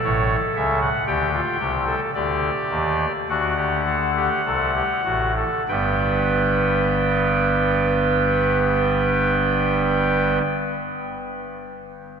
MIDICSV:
0, 0, Header, 1, 2, 480
1, 0, Start_track
1, 0, Tempo, 1063830
1, 488, Time_signature, 4, 2, 24, 8
1, 973, Tempo, 1145038
1, 1933, Tempo, 1237113
1, 3853, Tempo, 1260504
1, 4921, End_track
2, 0, Start_track
2, 0, Title_t, "Pipe organ"
2, 0, Program_c, 0, 19
2, 0, Note_on_c, 0, 69, 89
2, 17, Note_on_c, 0, 33, 87
2, 19, Note_on_c, 0, 45, 83
2, 20, Note_on_c, 0, 73, 98
2, 162, Note_off_c, 0, 33, 0
2, 164, Note_off_c, 0, 45, 0
2, 164, Note_off_c, 0, 73, 0
2, 251, Note_on_c, 0, 49, 85
2, 252, Note_on_c, 0, 37, 82
2, 253, Note_on_c, 0, 76, 91
2, 354, Note_off_c, 0, 76, 0
2, 361, Note_off_c, 0, 69, 0
2, 365, Note_on_c, 0, 78, 94
2, 399, Note_off_c, 0, 37, 0
2, 399, Note_off_c, 0, 49, 0
2, 470, Note_off_c, 0, 78, 0
2, 481, Note_on_c, 0, 67, 99
2, 482, Note_on_c, 0, 50, 92
2, 483, Note_on_c, 0, 38, 93
2, 484, Note_on_c, 0, 79, 90
2, 588, Note_off_c, 0, 67, 0
2, 604, Note_on_c, 0, 65, 81
2, 633, Note_off_c, 0, 50, 0
2, 634, Note_off_c, 0, 38, 0
2, 709, Note_off_c, 0, 65, 0
2, 722, Note_on_c, 0, 36, 84
2, 722, Note_on_c, 0, 48, 82
2, 722, Note_on_c, 0, 67, 85
2, 830, Note_off_c, 0, 67, 0
2, 840, Note_on_c, 0, 69, 77
2, 876, Note_off_c, 0, 36, 0
2, 876, Note_off_c, 0, 48, 0
2, 903, Note_off_c, 0, 79, 0
2, 951, Note_off_c, 0, 69, 0
2, 969, Note_on_c, 0, 74, 81
2, 970, Note_on_c, 0, 38, 80
2, 970, Note_on_c, 0, 50, 85
2, 973, Note_on_c, 0, 67, 86
2, 1116, Note_off_c, 0, 38, 0
2, 1116, Note_off_c, 0, 50, 0
2, 1204, Note_on_c, 0, 39, 83
2, 1204, Note_on_c, 0, 51, 81
2, 1352, Note_off_c, 0, 51, 0
2, 1353, Note_off_c, 0, 39, 0
2, 1376, Note_off_c, 0, 74, 0
2, 1378, Note_off_c, 0, 67, 0
2, 1448, Note_on_c, 0, 38, 88
2, 1448, Note_on_c, 0, 78, 78
2, 1449, Note_on_c, 0, 50, 84
2, 1449, Note_on_c, 0, 66, 86
2, 1551, Note_off_c, 0, 66, 0
2, 1564, Note_on_c, 0, 67, 74
2, 1669, Note_off_c, 0, 67, 0
2, 1688, Note_on_c, 0, 69, 80
2, 1792, Note_off_c, 0, 69, 0
2, 1815, Note_on_c, 0, 67, 84
2, 1866, Note_off_c, 0, 38, 0
2, 1867, Note_off_c, 0, 50, 0
2, 1919, Note_off_c, 0, 67, 0
2, 1935, Note_on_c, 0, 36, 85
2, 1935, Note_on_c, 0, 48, 81
2, 1936, Note_on_c, 0, 69, 80
2, 2034, Note_off_c, 0, 69, 0
2, 2053, Note_on_c, 0, 67, 74
2, 2079, Note_off_c, 0, 36, 0
2, 2079, Note_off_c, 0, 48, 0
2, 2153, Note_off_c, 0, 67, 0
2, 2167, Note_on_c, 0, 66, 80
2, 2168, Note_on_c, 0, 33, 76
2, 2168, Note_on_c, 0, 45, 79
2, 2269, Note_off_c, 0, 66, 0
2, 2278, Note_off_c, 0, 78, 0
2, 2290, Note_on_c, 0, 69, 81
2, 2316, Note_off_c, 0, 33, 0
2, 2316, Note_off_c, 0, 45, 0
2, 2391, Note_off_c, 0, 69, 0
2, 2414, Note_on_c, 0, 71, 85
2, 2414, Note_on_c, 0, 79, 80
2, 2415, Note_on_c, 0, 31, 85
2, 2415, Note_on_c, 0, 43, 83
2, 2425, Note_on_c, 0, 55, 75
2, 2426, Note_on_c, 0, 59, 76
2, 4231, Note_off_c, 0, 71, 0
2, 4231, Note_off_c, 0, 79, 0
2, 4232, Note_off_c, 0, 31, 0
2, 4232, Note_off_c, 0, 43, 0
2, 4242, Note_off_c, 0, 55, 0
2, 4243, Note_off_c, 0, 59, 0
2, 4921, End_track
0, 0, End_of_file